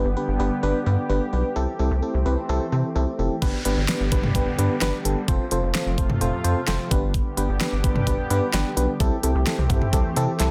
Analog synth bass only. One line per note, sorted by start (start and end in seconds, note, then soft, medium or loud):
0.05 0.15 G1 medium
0.28 0.38 G1 medium
0.40 0.50 G1 loud
0.63 0.73 G1 loud
0.86 0.97 G2 loud
1.10 1.20 G1 loud
1.33 1.43 B1 medium
1.56 1.66 C2 loud
1.79 1.90 C2 loud
1.91 2.01 C2 loud
2.14 2.25 C2 medium
2.26 2.36 C2 loud
2.49 2.59 C2 loud
2.72 2.83 C3 loud
2.96 3.06 C2 loud
3.19 3.29 F1 loud
3.42 3.52 G1 loud
3.65 3.76 G1 loud
3.77 3.87 G1 medium
4.00 4.11 G1 medium
4.12 4.22 G1 loud
4.35 4.45 G1 loud
4.58 4.69 G2 loud
4.82 4.92 G1 medium
5.05 5.15 G1 medium
5.28 5.38 F1 loud
5.52 5.62 F1 loud
5.63 5.73 F1 loud
5.86 5.97 F1 loud
5.98 6.08 F1 loud
6.21 6.32 F1 loud
6.45 6.55 F2 loud
6.68 6.78 F1 loud
6.91 7.22 G1 loud
7.37 7.48 G1 loud
7.49 7.59 G1 loud
7.73 7.83 G1 medium
7.84 7.94 G1 loud
8.07 8.17 G1 loud
8.30 8.41 G2 loud
8.54 8.64 G1 loud
8.77 8.87 B1 medium
9.00 9.10 C2 loud
9.23 9.34 C2 loud
9.35 9.45 C2 loud
9.58 9.69 C2 loud
9.70 9.80 C2 loud
9.93 10.03 C2 loud
10.17 10.27 C3 loud
10.40 10.50 C2 loud